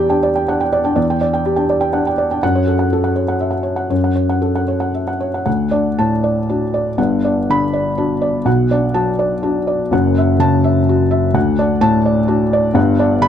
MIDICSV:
0, 0, Header, 1, 2, 480
1, 0, Start_track
1, 0, Key_signature, 2, "major"
1, 0, Tempo, 485830
1, 953, Time_signature, 3, 2, 24, 8
1, 3349, Tempo, 518135
1, 5269, Tempo, 502934
1, 7669, Tempo, 484653
1, 10069, Tempo, 472069
1, 12998, End_track
2, 0, Start_track
2, 0, Title_t, "Felt piano"
2, 0, Program_c, 0, 0
2, 0, Control_c, 0, 64, 127
2, 0, Note_on_c, 0, 40, 78
2, 0, Note_on_c, 0, 67, 74
2, 0, Note_on_c, 0, 74, 69
2, 0, Note_on_c, 0, 79, 77
2, 91, Note_on_c, 0, 62, 71
2, 97, Note_off_c, 0, 79, 0
2, 97, Note_on_c, 0, 79, 75
2, 171, Note_off_c, 0, 67, 0
2, 228, Note_off_c, 0, 74, 0
2, 228, Note_on_c, 0, 74, 71
2, 291, Note_off_c, 0, 62, 0
2, 294, Note_off_c, 0, 79, 0
2, 351, Note_on_c, 0, 79, 72
2, 421, Note_off_c, 0, 74, 0
2, 478, Note_on_c, 0, 78, 66
2, 480, Note_on_c, 0, 62, 75
2, 543, Note_off_c, 0, 79, 0
2, 594, Note_off_c, 0, 78, 0
2, 598, Note_on_c, 0, 79, 71
2, 668, Note_off_c, 0, 62, 0
2, 717, Note_on_c, 0, 74, 73
2, 788, Note_off_c, 0, 79, 0
2, 833, Note_on_c, 0, 62, 65
2, 837, Note_on_c, 0, 79, 71
2, 908, Note_off_c, 0, 74, 0
2, 909, Note_off_c, 0, 40, 0
2, 945, Note_on_c, 0, 74, 76
2, 949, Note_on_c, 0, 40, 79
2, 974, Control_c, 0, 64, 0
2, 1026, Note_off_c, 0, 62, 0
2, 1028, Note_off_c, 0, 79, 0
2, 1088, Note_on_c, 0, 79, 69
2, 1142, Note_off_c, 0, 74, 0
2, 1154, Control_c, 0, 64, 127
2, 1197, Note_on_c, 0, 74, 67
2, 1272, Note_off_c, 0, 79, 0
2, 1319, Note_on_c, 0, 79, 73
2, 1385, Note_off_c, 0, 74, 0
2, 1439, Note_on_c, 0, 67, 69
2, 1505, Note_off_c, 0, 79, 0
2, 1544, Note_on_c, 0, 62, 67
2, 1544, Note_on_c, 0, 79, 70
2, 1624, Note_off_c, 0, 67, 0
2, 1675, Note_on_c, 0, 74, 67
2, 1737, Note_off_c, 0, 62, 0
2, 1737, Note_off_c, 0, 79, 0
2, 1784, Note_on_c, 0, 79, 73
2, 1863, Note_off_c, 0, 74, 0
2, 1907, Note_on_c, 0, 78, 59
2, 1910, Note_on_c, 0, 62, 69
2, 1978, Note_off_c, 0, 79, 0
2, 2028, Note_off_c, 0, 78, 0
2, 2045, Note_on_c, 0, 79, 70
2, 2101, Note_off_c, 0, 62, 0
2, 2154, Note_on_c, 0, 74, 69
2, 2229, Note_off_c, 0, 79, 0
2, 2282, Note_on_c, 0, 62, 59
2, 2283, Note_on_c, 0, 79, 64
2, 2343, Note_off_c, 0, 74, 0
2, 2347, Note_off_c, 0, 40, 0
2, 2395, Note_off_c, 0, 62, 0
2, 2396, Note_off_c, 0, 79, 0
2, 2402, Note_on_c, 0, 78, 88
2, 2408, Note_on_c, 0, 42, 74
2, 2409, Control_c, 0, 64, 0
2, 2523, Note_on_c, 0, 73, 64
2, 2584, Control_c, 0, 64, 127
2, 2588, Note_off_c, 0, 78, 0
2, 2637, Note_on_c, 0, 69, 59
2, 2709, Note_off_c, 0, 73, 0
2, 2757, Note_on_c, 0, 78, 68
2, 2826, Note_off_c, 0, 69, 0
2, 2892, Note_on_c, 0, 69, 62
2, 2945, Note_off_c, 0, 78, 0
2, 3002, Note_on_c, 0, 78, 60
2, 3072, Note_off_c, 0, 69, 0
2, 3117, Note_on_c, 0, 73, 59
2, 3187, Note_off_c, 0, 78, 0
2, 3244, Note_on_c, 0, 78, 61
2, 3306, Note_off_c, 0, 73, 0
2, 3362, Note_on_c, 0, 76, 52
2, 3426, Note_off_c, 0, 78, 0
2, 3457, Note_on_c, 0, 78, 57
2, 3471, Note_off_c, 0, 76, 0
2, 3572, Note_on_c, 0, 73, 56
2, 3650, Note_off_c, 0, 78, 0
2, 3694, Note_on_c, 0, 78, 54
2, 3770, Note_off_c, 0, 73, 0
2, 3796, Note_off_c, 0, 42, 0
2, 3824, Note_on_c, 0, 42, 64
2, 3825, Note_on_c, 0, 73, 58
2, 3844, Control_c, 0, 64, 0
2, 3894, Note_off_c, 0, 78, 0
2, 3951, Note_on_c, 0, 78, 56
2, 3998, Control_c, 0, 64, 127
2, 4019, Note_off_c, 0, 73, 0
2, 4058, Note_on_c, 0, 73, 56
2, 4142, Note_off_c, 0, 78, 0
2, 4187, Note_on_c, 0, 78, 60
2, 4254, Note_off_c, 0, 73, 0
2, 4301, Note_on_c, 0, 69, 56
2, 4377, Note_off_c, 0, 78, 0
2, 4428, Note_on_c, 0, 78, 57
2, 4494, Note_off_c, 0, 69, 0
2, 4544, Note_on_c, 0, 73, 55
2, 4618, Note_off_c, 0, 78, 0
2, 4657, Note_on_c, 0, 78, 56
2, 4737, Note_off_c, 0, 73, 0
2, 4788, Note_on_c, 0, 76, 44
2, 4854, Note_off_c, 0, 78, 0
2, 4908, Note_off_c, 0, 76, 0
2, 4910, Note_on_c, 0, 78, 57
2, 5030, Note_on_c, 0, 73, 53
2, 5105, Note_off_c, 0, 78, 0
2, 5159, Note_on_c, 0, 78, 51
2, 5223, Note_off_c, 0, 73, 0
2, 5233, Note_off_c, 0, 42, 0
2, 5250, Note_off_c, 0, 78, 0
2, 5264, Note_on_c, 0, 78, 65
2, 5266, Note_on_c, 0, 38, 69
2, 5289, Control_c, 0, 64, 0
2, 5464, Control_c, 0, 64, 127
2, 5509, Note_on_c, 0, 74, 58
2, 5516, Note_on_c, 0, 62, 55
2, 5654, Note_off_c, 0, 78, 0
2, 5769, Note_on_c, 0, 81, 81
2, 5773, Note_on_c, 0, 45, 60
2, 5894, Note_off_c, 0, 74, 0
2, 5897, Note_off_c, 0, 62, 0
2, 6007, Note_on_c, 0, 74, 60
2, 6142, Note_off_c, 0, 81, 0
2, 6144, Note_off_c, 0, 45, 0
2, 6253, Note_on_c, 0, 66, 60
2, 6256, Note_on_c, 0, 62, 59
2, 6385, Note_off_c, 0, 74, 0
2, 6488, Note_on_c, 0, 74, 65
2, 6630, Note_off_c, 0, 66, 0
2, 6632, Note_off_c, 0, 62, 0
2, 6674, Note_off_c, 0, 38, 0
2, 6716, Note_on_c, 0, 31, 70
2, 6719, Note_on_c, 0, 78, 65
2, 6721, Note_off_c, 0, 74, 0
2, 6726, Note_on_c, 0, 43, 73
2, 6733, Control_c, 0, 64, 0
2, 6904, Control_c, 0, 64, 127
2, 6971, Note_on_c, 0, 74, 60
2, 6972, Note_on_c, 0, 62, 56
2, 7098, Note_off_c, 0, 78, 0
2, 7211, Note_on_c, 0, 50, 57
2, 7219, Note_on_c, 0, 83, 90
2, 7347, Note_off_c, 0, 74, 0
2, 7348, Note_off_c, 0, 62, 0
2, 7437, Note_on_c, 0, 74, 60
2, 7586, Note_off_c, 0, 50, 0
2, 7590, Note_off_c, 0, 83, 0
2, 7668, Note_on_c, 0, 66, 65
2, 7669, Note_on_c, 0, 62, 65
2, 7817, Note_off_c, 0, 74, 0
2, 7905, Note_on_c, 0, 74, 64
2, 8054, Note_off_c, 0, 66, 0
2, 8055, Note_off_c, 0, 62, 0
2, 8112, Note_off_c, 0, 31, 0
2, 8117, Note_off_c, 0, 43, 0
2, 8137, Note_on_c, 0, 35, 68
2, 8146, Note_on_c, 0, 78, 73
2, 8148, Note_off_c, 0, 74, 0
2, 8150, Note_on_c, 0, 47, 73
2, 8166, Control_c, 0, 64, 0
2, 8343, Control_c, 0, 64, 127
2, 8397, Note_on_c, 0, 74, 66
2, 8401, Note_on_c, 0, 62, 58
2, 8531, Note_off_c, 0, 78, 0
2, 8624, Note_on_c, 0, 54, 66
2, 8627, Note_on_c, 0, 81, 86
2, 8779, Note_off_c, 0, 74, 0
2, 8782, Note_off_c, 0, 62, 0
2, 8870, Note_on_c, 0, 74, 66
2, 9013, Note_off_c, 0, 54, 0
2, 9015, Note_off_c, 0, 81, 0
2, 9105, Note_on_c, 0, 62, 64
2, 9108, Note_on_c, 0, 66, 68
2, 9255, Note_off_c, 0, 74, 0
2, 9349, Note_on_c, 0, 74, 66
2, 9494, Note_off_c, 0, 62, 0
2, 9496, Note_off_c, 0, 66, 0
2, 9548, Note_off_c, 0, 35, 0
2, 9555, Note_off_c, 0, 47, 0
2, 9586, Note_on_c, 0, 30, 79
2, 9593, Note_off_c, 0, 74, 0
2, 9595, Note_on_c, 0, 42, 84
2, 9601, Note_on_c, 0, 78, 72
2, 9614, Control_c, 0, 64, 0
2, 9796, Control_c, 0, 64, 127
2, 9848, Note_on_c, 0, 76, 68
2, 9980, Note_off_c, 0, 78, 0
2, 10062, Note_on_c, 0, 49, 71
2, 10069, Note_on_c, 0, 81, 100
2, 10223, Note_off_c, 0, 76, 0
2, 10314, Note_on_c, 0, 76, 78
2, 10454, Note_off_c, 0, 49, 0
2, 10458, Note_off_c, 0, 81, 0
2, 10569, Note_on_c, 0, 66, 75
2, 10702, Note_off_c, 0, 76, 0
2, 10789, Note_on_c, 0, 76, 77
2, 10949, Note_off_c, 0, 66, 0
2, 10994, Note_off_c, 0, 30, 0
2, 10998, Note_off_c, 0, 42, 0
2, 11024, Note_on_c, 0, 38, 87
2, 11030, Note_on_c, 0, 78, 81
2, 11034, Note_off_c, 0, 76, 0
2, 11058, Control_c, 0, 64, 0
2, 11225, Control_c, 0, 64, 127
2, 11275, Note_on_c, 0, 62, 66
2, 11277, Note_on_c, 0, 74, 74
2, 11416, Note_off_c, 0, 78, 0
2, 11504, Note_on_c, 0, 45, 78
2, 11505, Note_on_c, 0, 81, 105
2, 11657, Note_off_c, 0, 62, 0
2, 11658, Note_off_c, 0, 74, 0
2, 11752, Note_on_c, 0, 74, 78
2, 11892, Note_off_c, 0, 45, 0
2, 11893, Note_off_c, 0, 81, 0
2, 11979, Note_on_c, 0, 66, 84
2, 11984, Note_on_c, 0, 62, 73
2, 12138, Note_off_c, 0, 74, 0
2, 12236, Note_on_c, 0, 74, 82
2, 12372, Note_off_c, 0, 66, 0
2, 12375, Note_off_c, 0, 62, 0
2, 12428, Note_off_c, 0, 38, 0
2, 12447, Note_on_c, 0, 31, 88
2, 12457, Note_on_c, 0, 78, 79
2, 12461, Note_on_c, 0, 43, 95
2, 12476, Note_off_c, 0, 74, 0
2, 12494, Control_c, 0, 64, 0
2, 12634, Control_c, 0, 64, 127
2, 12700, Note_on_c, 0, 62, 73
2, 12706, Note_on_c, 0, 74, 81
2, 12848, Note_off_c, 0, 78, 0
2, 12927, Note_on_c, 0, 50, 73
2, 12935, Note_on_c, 0, 83, 111
2, 12998, Note_off_c, 0, 31, 0
2, 12998, Note_off_c, 0, 43, 0
2, 12998, Note_off_c, 0, 50, 0
2, 12998, Note_off_c, 0, 62, 0
2, 12998, Note_off_c, 0, 74, 0
2, 12998, Note_off_c, 0, 83, 0
2, 12998, End_track
0, 0, End_of_file